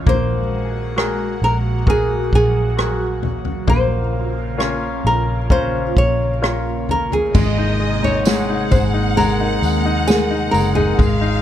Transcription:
0.06 fingered electric bass A#1, analog synth pad A#2 G#3 F#4, grand piano A#3, nylon-string guitar C5, kick, floor tom
0.96 grand piano F#4 G#4 A#4, cross-stick
1.42 fingered electric bass A#1, nylon-string guitar A#4
1.86 analog synth pad F#3, grand piano F#4 G#4 A#4, kick, floor tom
1.90 nylon-string guitar G#4
2.33 fingered electric bass A#1, nylon-string guitar G#4, kick
2.77 grand piano F#4 G#4 A#4, cross-stick
3.23 floor tom
3.45 floor tom
3.67 fingered electric bass A#1, analog synth pad C#3 A#3 F4, grand piano A#3, nylon-string guitar C5, kick, floor tom
4.58 grand piano C#4 F4 A#4, cross-stick
5.05 fingered electric bass A#1, nylon-string guitar A#4
5.50 grand piano C#4 F4 A#4, nylon-string guitar C5, kick, floor tom
5.97 fingered electric bass A#1, nylon-string guitar C#5, kick
6.42 grand piano F4 A#4 C#5, cross-stick
6.89 nylon-string guitar A#4, floor tom
7.12 nylon-string guitar G#4, floor tom
7.34 fingered electric bass G#1, analog synth pad C3 A#3 G#4, grand piano G#3, violin section D#5, kick, floor tom, crash, tambourine
7.58 grand piano D#4
7.80 grand piano G#3
8.03 grand piano D#4, nylon-string guitar C#5, floor tom
8.25 grand piano G#3, violin section F#5, snare, tambourine
8.49 grand piano D#4
8.71 fingered electric bass G#1, grand piano G#3, nylon-string guitar C5, kick, floor tom, tambourine
8.94 grand piano D#4
9.17 grand piano G#3, analog synth pad A#4, nylon-string guitar A#4, floor tom, tambourine
9.40 grand piano D#4
9.62 fingered electric bass D#2, grand piano G#3, tambourine
9.85 grand piano D#4
10.07 grand piano G#3, nylon-string guitar G#4, snare, tambourine
10.30 grand piano D#4
10.51 fingered electric bass F#1, grand piano G#3, nylon-string guitar A#4, tambourine
10.75 grand piano D#4, nylon-string guitar G#4, floor tom
10.98 fingered electric bass G#1, analog synth pad D#3 C#4 F4, grand piano G#3, violin section F5, kick, floor tom, tambourine
11.21 grand piano D#4

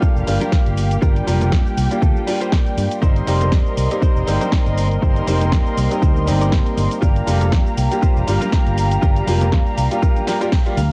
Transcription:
Already playing: grand piano G3 A#3 D4 F4 G4, string section G4 F5
0.02 clean electric guitar F4 G4 A4, muted fingered electric bass stroke, kick, shaker
0.16 fingered electric bass F1, shaker
0.27 fingered electric bass G1, grand piano G3 A#3 D4 F4 G4, open hi-hat, shaker
0.41 clean electric guitar F4 G4 A#4, closed hi-hat, high conga, shaker
0.52 kick, snare, shaker
0.66 fingered electric bass G1, muted clean electric guitar stroke, closed hi-hat, shaker
0.77 open hi-hat, shaker
0.91 closed hi-hat, shaker
1.02 fingered electric bass G1, grand piano G3 A#3 D4 F4 G4, clean electric guitar F4 G4 A#4, string section G5, kick, shaker
1.16 closed hi-hat, shaker
1.27 fingered electric bass F1, grand piano G3 A#3 D4 F4 G4, clean electric guitar F4 G4 A#4, open hi-hat, high conga, shaker
1.41 closed hi-hat, low conga, shaker
1.52 fingered electric bass F2, kick, snare, shaker
1.66 shaker
1.77 fingered electric bass C2, muted clean electric guitar stroke, open hi-hat, shaker
1.91 grand piano G3 A#3 D4 F4 G4, closed hi-hat, shaker
2.02 fingered electric bass D2, clean electric guitar F4 G4 A4, kick, shaker
2.16 high conga, shaker
2.27 grand piano G3 A#3 D4 F4 G4, open hi-hat, shaker
2.41 clean electric guitar F4 G4 C5, closed hi-hat, shaker
2.52 kick, snare, shaker
2.66 muted clean electric guitar stroke, closed hi-hat, shaker
2.77 fingered electric bass G2, open hi-hat, high conga, shaker
2.91 closed hi-hat, shaker
3.02 fingered electric bass G1, grand piano G3 A#3 C4 D#4 G4, clean electric guitar D#4 A#4 C5, string section A#4 D#5 C6, kick, shaker
3.16 closed hi-hat, shaker
3.27 fingered electric bass F1, grand piano G3 A#3 C4 D#4 G4, clean electric guitar D#4 A#4 C5, open hi-hat, shaker
3.41 closed hi-hat, low conga, shaker
3.52 fingered electric bass F2, kick, snare, shaker
3.66 shaker
3.77 fingered electric bass C2, muted clean electric guitar stroke, open hi-hat, shaker
3.91 grand piano G3 A#3 C4 D#4 G4, closed hi-hat, shaker
4.02 clean electric guitar D#4 A#4 C5, muted fingered electric bass stroke, kick, shaker
4.16 fingered electric bass F1, shaker
4.27 fingered electric bass G1, grand piano G3 A#3 C4 D#4 G4, open hi-hat, shaker
4.41 clean electric guitar D#4 A#4 C5, closed hi-hat, high conga, shaker
4.52 kick, snare, shaker
4.66 fingered electric bass G1, muted clean electric guitar stroke, closed hi-hat, shaker
4.78 open hi-hat, shaker
4.91 closed hi-hat, shaker
5.02 fingered electric bass G1, grand piano G3 A#3 C4 D#4 G4, clean electric guitar D#4 A#4 C5, kick, shaker
5.16 closed hi-hat, shaker
5.27 fingered electric bass F1, grand piano G3 A#3 C4 D#4 G4, clean electric guitar D#4 A#4 C5, open hi-hat, high conga, shaker
5.41 closed hi-hat, low conga, shaker
5.52 fingered electric bass F2, kick, snare, shaker
5.66 shaker
5.77 fingered electric bass C2, muted clean electric guitar stroke, open hi-hat, shaker
5.91 grand piano G3 A#3 C4 D#4 G4, closed hi-hat, shaker
6.02 fingered electric bass D2, clean electric guitar D#4 A#4 C5, kick, shaker
6.16 high conga, shaker
6.26 fingered electric bass G1, grand piano G3 A#3 C4 D#4 G4, open hi-hat, shaker
6.41 clean electric guitar D#4 A#4 D5, closed hi-hat, shaker
6.52 kick, snare, shaker
6.66 muted clean electric guitar stroke, closed hi-hat, shaker
6.77 fingered electric bass G1, open hi-hat, high conga, shaker
6.91 closed hi-hat, shaker
7.02 fingered electric bass G1, grand piano G3 A#3 D4 F4 G4, clean electric guitar F4 G4 A#4, string section G4 F5 A#5, kick, shaker
7.16 closed hi-hat, shaker
7.27 fingered electric bass F1, grand piano G3 A#3 D4 F4 G4, clean electric guitar F4 G4 A4, open hi-hat, shaker
7.41 closed hi-hat, low conga, shaker
7.52 fingered electric bass F2, kick, snare, shaker
7.66 shaker
7.77 fingered electric bass C2, muted clean electric guitar stroke, open hi-hat, shaker
7.91 grand piano G3 A#3 D4 F4 G4, closed hi-hat, shaker
8.02 clean electric guitar F4 G4 C5, muted fingered electric bass stroke, kick, shaker
8.16 fingered electric bass F1, shaker
8.27 fingered electric bass G1, grand piano G3 A#3 D4 F4 G4, open hi-hat, shaker
8.41 clean electric guitar F4 G4 A#4, closed hi-hat, high conga, shaker
8.52 kick, snare, shaker
8.66 fingered electric bass G1, muted clean electric guitar stroke, closed hi-hat, shaker
8.77 open hi-hat, shaker
8.91 closed hi-hat, shaker
9.02 fingered electric bass G1, grand piano G3 A#3 D4 F4 G4, clean electric guitar F4 G4 A#4, kick, shaker
9.16 closed hi-hat, shaker
9.27 fingered electric bass F1, grand piano G3 A#3 D4 F4 G4, clean electric guitar F4 G4 A#4, open hi-hat, high conga, shaker
9.41 closed hi-hat, low conga, shaker
9.52 fingered electric bass F2, kick, snare, shaker
9.66 closed hi-hat, shaker
9.77 fingered electric bass C2, muted clean electric guitar stroke, open hi-hat, shaker
9.91 grand piano G3 A#3 D4 F4 G4, closed hi-hat, shaker
10.02 clean electric guitar F4 G4 A#4, kick, shaker
10.16 closed hi-hat, high conga, shaker
10.27 grand piano G3 A#3 D4 F4 G4, snare, open hi-hat, shaker
10.41 grand piano G3 A#3 D4 F4 G4, clean electric guitar F4 G4 A#4, closed hi-hat, shaker
10.52 clean electric guitar G5, kick, snare, shaker
10.66 grand piano G3 A#3 D4 F4 G4, muted clean electric guitar stroke, closed hi-hat, shaker
10.77 fingered electric bass D2, clean electric guitar F5, open hi-hat, high conga, shaker

